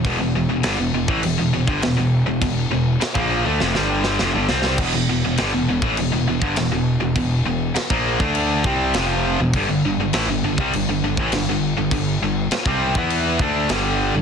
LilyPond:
<<
  \new Staff \with { instrumentName = "Distorted electric guitar" } { \clef bass \time 4/4 \key e \phrygian \tempo 4 = 101 <e, b,>16 <e, b,>16 <e, b,>16 <e, b,>16 <g, d>16 <e, b,>16 <e, b,>16 <a, e>16 <e, b,>16 <e, b,>16 <e, b,>16 <g, d>16 <e, b,>16 <e, b,>8 <e, b,>16 | <e, b,>8 <e, b,>8 r16 <ais, f ais>8 <d a>16 <f, c>16 <g, d g>8. <f, c>16 <g, d>16 <c g c'>8 | \key e \minor <e, b,>16 <e, b,>16 <e, b,>16 <e, b,>16 <g, d>16 <e, b,>16 <e, b,>16 <a, e>16 <e, b,>16 <e, b,>16 <e, b,>16 <g, d>16 <e, b,>16 <e, b,>8 <e, b,>16 | <e, b,>8 <e, b,>8 r16 <ais, f ais>8 <d a d'>8. <c g c'>8 <f, c f>8. <e, b,>16 |
<g, d>16 <g, d>16 <g, d>16 <g, d>16 <a, e>16 <g, d>16 <g, d>16 <c g>16 <g, d>16 <g, d>16 <g, d>16 <a, e>16 <g, d>16 <g, d>8 <g, d>16 | <g, d>8 <g, d>8 r16 <c g c'>8 <e b e'>8. <d a d'>8 <g, d g>8. <g, d>16 | }
  \new Staff \with { instrumentName = "Picked electric bass" } { \clef bass \time 4/4 \key e \phrygian e,,16 e,,16 e,,16 e,,16 g,,16 e,,16 e,,16 a,,16 e,,16 e,,16 e,,16 g,,16 e,,16 e,,8 e,,16 | e,,8 e,,8 r16 ais,,8 d,16 f,,16 g,,8. f,,16 g,,16 c,8 | \key e \minor e,,16 e,,16 e,,16 e,,16 g,,16 e,,16 e,,16 a,,16 e,,16 e,,16 e,,16 g,,16 e,,16 e,,8 e,,16 | e,,8 e,,8 r16 ais,,8 d,8. c,8 f,,8. e,,16 |
g,,16 g,,16 g,,16 g,,16 a,,16 g,,16 g,,16 c,16 g,,16 g,,16 g,,16 a,,16 g,,16 g,,8 g,,16 | g,,8 g,,8 r16 c,8 e,8. d,8 g,,8. g,,16 | }
  \new DrumStaff \with { instrumentName = "Drums" } \drummode { \time 4/4 <cymc bd>4 <cymc sn>8. bd16 cymc8. bd16 <cymc sn>4 | <cymc bd>4 <cymc sn>16 bd8. sn16 sn8 sn16 sn8 sn16 sn16 | <cymc bd>4 <cymc sn>8. bd16 cymc8. bd16 <cymc sn>4 | <cymc bd>4 <cymc sn>16 bd8 bd16 cymc8 bd8 <cymc sn>4 |
<cymc bd>4 <cymc sn>8. bd16 cymc8. bd16 <cymc sn>4 | <cymc bd>4 <cymc sn>16 bd8 bd16 cymc8 bd8 <cymc sn>4 | }
>>